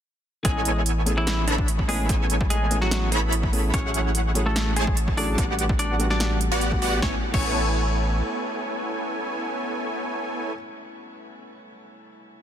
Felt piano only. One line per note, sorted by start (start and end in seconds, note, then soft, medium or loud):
0.43 1.03 E3 medium
0.43 1.04 B3 medium
0.43 1.04 C#4 medium
0.43 1.05 E4 medium
0.43 1.05 G#5 medium
1.05 1.20 A3 loud
1.05 1.20 B3 medium
1.05 1.21 C#4 medium
1.05 1.21 E4 medium
1.05 1.21 G#4 loud
1.88 2.06 A3 loud
1.88 2.07 B3 medium
1.88 2.07 C#4 medium
1.88 2.07 E4 medium
1.88 2.07 G#4 loud
2.07 2.68 A3 medium
2.07 2.68 B3 medium
2.07 2.69 C#4 medium
2.07 2.69 E4 medium
2.07 2.70 G#5 medium
2.70 2.84 A3 loud
2.70 2.85 B3 medium
2.70 2.85 C#4 medium
2.70 2.85 E4 medium
2.70 2.85 G#4 loud
3.52 3.71 A3 loud
3.52 3.71 B3 medium
3.52 3.71 C#4 medium
3.52 3.71 E4 medium
3.52 3.72 G#4 loud
3.72 4.32 F#3 medium
3.72 4.32 A3 medium
3.76 4.34 G#4 medium
4.34 4.49 F#3 loud
4.34 4.49 A3 medium
4.34 4.49 C#4 loud
4.34 4.50 E4 medium
4.34 4.50 G#4 loud
5.16 5.35 F#3 loud
5.16 5.35 A3 medium
5.16 5.36 C#4 medium
5.16 5.36 E4 medium
5.16 5.36 G#4 loud
5.36 5.96 G3 medium
5.36 5.97 A3 medium
5.36 5.97 B3 medium
5.36 5.98 D4 medium
5.36 5.98 F#5 medium
5.99 6.13 G3 loud
5.99 6.13 A3 medium
5.99 6.14 B3 medium
5.99 6.14 D4 medium
5.99 6.14 F#4 loud
6.71 7.00 G3 loud
6.71 6.98 A3 medium
6.71 6.99 B3 medium
6.71 7.00 D4 medium
6.71 7.01 F#4 loud
6.99 7.13 A3 medium
6.99 7.13 B3 medium
6.99 7.14 C#4 medium
7.04 7.15 E4 medium
7.04 7.16 G#5 loud
7.31 10.49 A3 medium
7.31 10.51 B3 medium
7.31 10.52 C#4 medium
7.35 10.54 E4 medium
7.35 10.55 G#5 medium